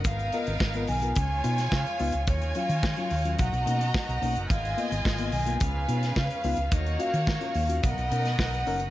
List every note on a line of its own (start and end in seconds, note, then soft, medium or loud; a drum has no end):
0.00 1.15 D#3 medium
0.00 2.24 B3 medium
0.00 1.13 A#4 medium
0.04 0.29 G#1 loud
0.04 0.18 G#2 medium
0.04 0.18 D#3 medium
0.04 1.15 G#3 medium
0.04 1.14 B3 medium
0.04 3.35 F4 medium
0.04 1.14 A#4 medium
0.04 1.14 F5 loud
0.04 0.35 F5 loud
0.04 kick loud
0.04 closed hi-hat medium
0.19 closed hi-hat soft
0.32 0.46 B3 medium
0.32 0.46 F4 medium
0.32 0.46 A#4 loud
0.32 0.90 D#5 medium
0.32 closed hi-hat medium
0.47 0.59 G#1 loud
0.47 0.53 F4 soft
0.47 0.53 A#4 soft
0.47 closed hi-hat soft
0.60 kick loud
0.60 snare loud
0.74 0.88 B3 medium
0.74 0.88 F4 medium
0.74 0.88 A#4 medium
0.74 closed hi-hat soft
0.87 1.12 B1 loud
0.87 1.02 G#2 medium
0.87 1.02 D#3 medium
0.87 1.74 G#5 loud
0.87 open hi-hat medium
1.02 1.15 B3 medium
1.02 1.15 F4 medium
1.02 1.16 A#4 medium
1.02 closed hi-hat medium
1.15 1.40 C#2 loud
1.15 2.26 C#3 medium
1.15 1.30 C#3 medium
1.15 2.26 F3 medium
1.15 2.26 G#3 medium
1.15 1.29 G#3 medium
1.15 2.26 F4 medium
1.15 2.26 C#5 loud
1.15 2.26 G#5 loud
1.15 kick loud
1.15 closed hi-hat medium
1.43 1.68 B2 medium
1.43 1.57 B3 medium
1.43 1.57 D#4 medium
1.43 1.57 F4 loud
1.43 closed hi-hat medium
1.58 1.64 D#4 soft
1.58 1.64 F4 soft
1.58 snare soft
1.58 closed hi-hat medium
1.72 1.84 C#3 loud
1.72 2.25 F5 medium
1.72 kick loud
1.72 snare loud
1.87 closed hi-hat soft
1.99 2.12 C#2 medium
1.99 2.13 B3 loud
1.99 2.13 D#4 loud
1.99 2.13 F4 loud
1.99 open hi-hat medium
2.12 2.28 C#2 medium
2.12 closed hi-hat medium
2.27 2.51 D#2 loud
2.27 4.48 D#3 medium
2.27 2.41 D#3 medium
2.27 4.48 F#3 medium
2.27 5.58 A#3 medium
2.27 3.38 C#4 medium
2.27 3.37 F4 medium
2.27 3.37 C#5 loud
2.27 2.55 C#5 medium
2.27 3.37 G#5 loud
2.27 kick loud
2.27 closed hi-hat medium
2.42 closed hi-hat soft
2.55 2.68 F#3 medium
2.55 2.68 C#4 medium
2.55 2.69 F4 loud
2.55 3.42 F5 medium
2.55 closed hi-hat medium
2.69 2.93 D#3 loud
2.69 2.75 C#4 soft
2.69 2.75 F4 soft
2.69 closed hi-hat medium
2.83 kick loud
2.83 snare loud
2.97 3.10 F#3 medium
2.97 3.10 C#4 medium
2.97 3.10 F4 medium
2.97 closed hi-hat soft
3.10 3.35 D#2 medium
3.10 3.24 D#3 medium
3.10 open hi-hat medium
3.25 3.38 F#3 medium
3.25 3.38 C#4 medium
3.25 3.38 F4 medium
3.25 closed hi-hat medium
3.39 3.51 B1 medium
3.39 3.52 B2 medium
3.39 3.52 F#3 medium
3.39 5.59 B3 medium
3.39 4.48 F#4 medium
3.39 4.49 F#4 medium
3.39 4.48 D#5 medium
3.39 3.95 F#5 loud
3.39 4.48 A#5 medium
3.39 kick loud
3.39 closed hi-hat medium
3.53 3.64 B1 loud
3.53 closed hi-hat soft
3.66 3.90 B2 medium
3.66 3.79 A#3 medium
3.66 3.79 C#4 medium
3.66 3.79 D#4 medium
3.66 closed hi-hat medium
3.80 3.86 C#4 soft
3.80 3.86 D#4 medium
3.80 closed hi-hat medium
3.94 4.34 F#5 medium
3.94 kick loud
3.94 snare loud
4.09 4.20 B1 medium
4.09 closed hi-hat soft
4.22 4.34 B1 loud
4.22 4.35 A#3 loud
4.22 4.35 C#4 loud
4.22 4.35 D#4 loud
4.22 open hi-hat medium
4.35 4.48 F#1 medium
4.35 closed hi-hat soft
4.49 4.74 G#1 loud
4.49 4.63 G#2 medium
4.49 5.59 D#3 medium
4.49 4.63 D#3 medium
4.49 6.70 G#3 medium
4.49 5.60 F4 medium
4.49 5.59 F4 medium
4.49 5.59 D#5 medium
4.49 4.79 F5 loud
4.49 5.59 G#5 loud
4.49 kick loud
4.49 closed hi-hat medium
4.65 closed hi-hat soft
4.77 4.91 A#3 medium
4.77 4.91 B3 medium
4.77 4.91 F4 loud
4.77 5.35 D#5 loud
4.77 closed hi-hat medium
4.92 5.03 G#1 loud
4.92 4.97 B3 soft
4.92 4.97 F4 soft
4.92 closed hi-hat medium
5.05 5.29 G#1 medium
5.05 kick loud
5.05 snare loud
5.18 5.32 A#3 medium
5.18 5.32 B3 medium
5.18 5.32 F4 medium
5.18 closed hi-hat soft
5.32 5.56 B1 loud
5.32 5.46 G#2 medium
5.32 5.46 D#3 medium
5.32 6.13 G#5 loud
5.32 open hi-hat medium
5.46 5.60 A#3 medium
5.46 5.60 B3 medium
5.46 5.60 F4 medium
5.46 closed hi-hat medium
5.60 5.85 C#2 loud
5.60 5.74 C#3 medium
5.60 6.71 C#3 medium
5.60 6.71 F3 medium
5.60 5.74 G#3 medium
5.60 6.71 B3 medium
5.60 6.70 C#4 medium
5.60 6.70 B4 medium
5.60 7.81 F5 medium
5.60 6.70 F5 medium
5.60 kick loud
5.60 closed hi-hat medium
5.88 6.12 B2 medium
5.88 6.01 B3 medium
5.88 6.01 D#4 medium
5.88 6.01 F4 medium
5.88 closed hi-hat medium
6.03 6.08 D#4 soft
6.03 6.08 F4 soft
6.03 snare soft
6.03 closed hi-hat medium
6.16 6.28 C#3 loud
6.16 6.69 F5 medium
6.16 kick loud
6.16 snare loud
6.31 closed hi-hat soft
6.44 6.56 C#2 loud
6.44 6.57 B3 loud
6.44 6.57 D#4 medium
6.44 6.58 F4 loud
6.44 open hi-hat medium
6.57 6.70 C#2 medium
6.57 closed hi-hat soft
6.71 6.96 D#2 loud
6.71 8.90 D#3 medium
6.71 6.85 D#3 medium
6.71 7.82 F#3 medium
6.71 6.85 A#3 medium
6.71 7.81 A#3 loud
6.71 7.82 C#4 medium
6.71 7.81 F#4 medium
6.71 8.90 A#4 medium
6.71 7.81 C#5 loud
6.71 7.02 D#5 loud
6.71 kick loud
6.71 closed hi-hat medium
6.86 closed hi-hat soft
6.99 7.12 C#4 medium
6.99 7.12 F4 medium
6.99 7.12 F#4 loud
6.99 7.86 F5 loud
6.99 closed hi-hat medium
7.13 7.37 D#3 loud
7.13 7.19 F4 soft
7.13 7.19 F#4 soft
7.13 closed hi-hat medium
7.27 kick loud
7.27 snare loud
7.41 7.54 C#4 medium
7.41 7.54 F4 medium
7.41 7.55 F#4 medium
7.41 closed hi-hat soft
7.54 7.79 D#2 medium
7.54 7.68 D#3 medium
7.54 7.68 A#3 medium
7.54 open hi-hat medium
7.69 7.82 C#4 medium
7.69 7.82 F4 medium
7.69 7.83 F#4 medium
7.69 closed hi-hat medium
7.83 7.95 B1 loud
7.83 7.97 B2 medium
7.83 8.90 F#3 medium
7.83 7.96 F#3 medium
7.83 8.90 B3 loud
7.83 8.90 B3 medium
7.83 8.90 F#4 medium
7.83 8.90 A#4 medium
7.83 8.90 D#5 loud
7.83 8.39 F#5 medium
7.83 kick loud
7.83 closed hi-hat medium
7.98 8.09 B1 medium
7.98 closed hi-hat soft
8.11 8.35 B2 medium
8.11 8.24 C#4 medium
8.11 8.24 D#4 medium
8.11 8.24 A#4 medium
8.11 closed hi-hat medium
8.25 8.31 D#4 soft
8.25 8.31 A#4 soft
8.25 snare soft
8.25 closed hi-hat soft
8.39 8.62 B1 medium
8.39 8.78 F#5 medium
8.39 kick loud
8.39 snare loud
8.54 closed hi-hat soft
8.67 8.90 F#1 medium
8.67 8.80 C#4 loud
8.67 8.80 D#4 medium
8.67 8.80 A#4 loud
8.67 open hi-hat medium
8.80 closed hi-hat medium